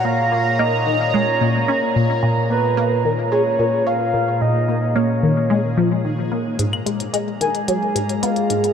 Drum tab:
HH |----------------|----------------|----------------|x-xxx-xxx-xxxxxx|
CL |----------------|----------------|----------------|-x--------------|